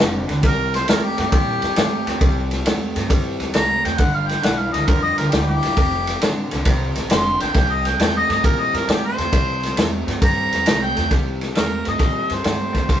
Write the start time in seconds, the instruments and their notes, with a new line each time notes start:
Already playing: harmonica F4
0.00 upright bass F1, clean electric guitar F2 D3, snare
0.28 upright bass D2, clean electric guitar F2 D3, snare, ride
0.43 upright bass C2, clean electric guitar C3 G3, harmonica A#4, kick, snare, ride
0.74 harmonica C5, snare, ride
0.88 upright bass E2, clean electric guitar C3 A3, harmonica A#4, snare, ride
1.04 harmonica G4
1.17 upright bass G2, clean electric guitar C3 A3, harmonica G4, snare, ride
1.32 upright bass A#2, clean electric guitar C3 G3, kick, ride
1.62 upright bass G2, snare, ride
1.76 upright bass G2, clean electric guitar C3 A3, snare, ride
2.06 upright bass E2, clean electric guitar C3 A3, snare, ride
2.21 upright bass C2, clean electric guitar C3 G3, kick, ride
2.51 snare, ride
2.65 clean electric guitar C3 A3, snare, ride
2.95 upright bass G2, clean electric guitar C3 A3, snare, ride
3.09 upright bass G2, clean electric guitar C3 G3, kick, ride
3.40 upright bass E2, snare, ride
3.54 upright bass C2, clean electric guitar C3 A3, harmonica A#5, snare, ride
3.84 upright bass E2, clean electric guitar C3 A3, harmonica G5, snare, ride
3.98 upright bass G1, clean electric guitar G2 D3, harmonica F#5, kick, ride
4.14 harmonica F5
4.27 harmonica G5, snare, ride
4.42 upright bass B1, clean electric guitar G2 E3, harmonica F#5, snare, ride
4.58 harmonica F5
4.72 upright bass D2, clean electric guitar G2 E3, harmonica D#5, snare, ride
4.87 upright bass F2, clean electric guitar G2 D3, harmonica A#4, kick, ride
5.02 harmonica D#5
5.17 upright bass D2, harmonica A#4, snare, ride
5.31 upright bass D2, clean electric guitar G2 E3, harmonica G4, snare, ride
5.48 harmonica G4
5.62 clean electric guitar G2 E3, snare, ride
5.77 upright bass F1, clean electric guitar F2 C3, kick, ride
6.07 snare, ride
6.21 clean electric guitar F2 D3, snare, ride
6.51 upright bass C2, clean electric guitar F2 D3, snare, ride
6.65 upright bass C2, clean electric guitar F2 C3, kick, snare, ride
6.95 upright bass A1, snare, ride
7.10 upright bass F1, clean electric guitar F2 D3, harmonica C6, snare, ride
7.40 upright bass A1, clean electric guitar F2 D3, harmonica G5, snare, ride
7.54 upright bass C2, clean electric guitar C3 G3, harmonica G5, kick, snare, ride
7.72 harmonica D#5
7.85 harmonica G5, snare, ride
7.98 upright bass E2, clean electric guitar C3 A3, harmonica G5, snare, ride
8.16 harmonica D#5
8.29 upright bass G2, clean electric guitar C3 A3, harmonica D#5, snare, ride
8.43 upright bass A#2, clean electric guitar C3 G3, harmonica A#4, kick, ride
8.60 harmonica D#5
8.73 upright bass G2, harmonica A#4, snare, ride
8.87 upright bass G2, clean electric guitar C3 A3, harmonica G4, snare, ride
9.05 harmonica C5
9.18 upright bass E2, clean electric guitar C3 A3, snare, ride
9.31 upright bass C2, clean electric guitar C3 G3, kick, ride
9.63 snare, ride
9.76 upright bass E2, clean electric guitar C3 A3, snare, ride
10.07 upright bass G2, clean electric guitar C3 A3, snare, ride
10.22 upright bass G2, clean electric guitar C3 G3, harmonica A#5, kick, ride
10.52 upright bass E2, snare, ride
10.66 upright bass C2, clean electric guitar C3 A3, snare, ride
10.82 harmonica G5
10.95 upright bass E2, clean electric guitar C3 A3, snare, ride
11.10 upright bass C2, clean electric guitar C3 G3, kick, snare, ride
11.41 snare, ride
11.54 upright bass E2, clean electric guitar C3 A3, harmonica A#4, snare, ride
11.85 upright bass G2, clean electric guitar C3 A3, harmonica D#5, snare, ride
11.99 upright bass A#2, clean electric guitar C3 G3, kick, snare, ride
12.30 upright bass G2, harmonica C5, snare, ride
12.43 upright bass G2, clean electric guitar C3 A3, snare, ride
12.72 upright bass E2, clean electric guitar C3 A3, kick, snare, ride
12.88 upright bass C2, clean electric guitar C3 G3, harmonica C5, kick, snare, ride